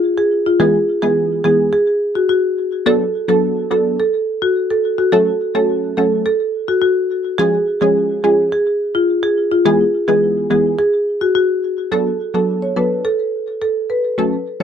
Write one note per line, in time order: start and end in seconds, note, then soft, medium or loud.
0.18 0.28 G#4 medium
0.46 0.56 F4 medium
0.60 0.77 E3 loud
0.60 0.78 G#3 medium
0.60 0.78 B3 medium
0.60 0.70 G#4 loud
0.60 0.78 G#4 loud
1.02 1.41 E3 medium
1.02 1.41 G#3 medium
1.02 1.42 B3 medium
1.02 1.13 G#4 medium
1.02 1.42 G#4 medium
1.44 1.71 E3 medium
1.44 1.71 G#3 medium
1.44 1.71 B3 medium
1.44 1.55 G#4 medium
1.44 1.71 G#4 medium
1.73 1.83 G#4 medium
2.15 2.26 F#4 medium
2.29 2.69 F#4 medium
2.86 3.04 F#3 loud
2.86 3.04 B3 medium
2.86 3.04 D4 medium
2.86 2.97 A4 loud
2.86 3.04 A4 loud
3.28 3.67 F#3 medium
3.28 3.68 B3 medium
3.28 3.68 D4 medium
3.28 3.39 A4 medium
3.28 3.68 A4 medium
3.71 3.97 F#3 medium
3.71 3.97 B3 medium
3.71 3.97 D4 medium
3.71 3.81 A4 medium
3.71 3.97 A4 medium
4.00 4.10 A4 medium
4.42 4.52 F#4 medium
4.70 4.81 A4 medium
4.98 5.09 F#4 medium
5.12 5.30 F#3 loud
5.12 5.30 A3 medium
5.12 5.30 C#4 medium
5.12 5.23 A4 loud
5.12 5.31 A4 loud
5.55 5.94 F#3 medium
5.55 5.94 A3 medium
5.55 5.94 C#4 medium
5.55 5.65 A4 medium
5.55 5.94 A4 medium
5.97 6.24 F#3 medium
5.97 6.24 A3 medium
5.97 6.24 C#4 medium
5.97 6.08 A4 medium
5.97 6.24 A4 medium
6.26 6.36 A4 medium
6.68 6.79 F#4 medium
6.82 7.22 F#4 medium
7.38 7.57 F3 medium
7.38 7.57 G#3 medium
7.38 7.57 C#4 medium
7.38 7.49 G#4 loud
7.38 7.57 G#4 loud
7.81 8.20 F3 medium
7.81 8.21 G#3 medium
7.81 8.21 C#4 medium
7.81 7.92 G#4 medium
7.81 8.21 G#4 medium
8.24 8.50 F3 medium
8.24 8.50 G#3 medium
8.24 8.50 C#4 medium
8.24 8.34 G#4 medium
8.24 8.50 G#4 medium
8.52 8.63 G#4 medium
8.95 9.05 F4 medium
9.23 9.33 G#4 medium
9.51 9.62 F4 medium
9.65 9.83 E3 loud
9.65 9.83 G#3 medium
9.65 9.83 B3 medium
9.65 9.76 G#4 loud
9.65 9.83 G#4 loud
10.08 10.47 E3 medium
10.08 10.47 G#3 medium
10.08 10.47 B3 medium
10.08 10.18 G#4 medium
10.08 10.47 G#4 medium
10.50 10.76 E3 medium
10.50 10.76 G#3 medium
10.50 10.76 B3 medium
10.50 10.61 G#4 medium
10.50 10.77 G#4 medium
10.79 10.89 G#4 medium
11.21 11.32 F#4 medium
11.35 11.75 F#4 medium
11.91 12.09 F#3 medium
11.91 12.10 B3 medium
11.91 12.10 D4 medium
11.91 12.02 A4 medium
11.91 12.10 A4 loud
12.34 12.73 F#3 medium
12.34 12.73 B3 medium
12.34 12.73 D4 medium
12.34 12.73 A4 medium
12.34 12.45 A4 medium
12.62 12.73 C#5 medium
12.76 13.03 F#3 medium
12.76 13.03 B3 medium
12.76 13.03 D4 medium
12.76 13.03 A4 medium
12.76 12.87 B4 medium
13.05 13.45 A4 medium
13.62 13.72 A4 medium
13.90 14.00 B4 medium
14.18 14.36 F#3 medium
14.18 14.36 A3 medium
14.18 14.36 C#4 medium
14.18 14.36 A4 loud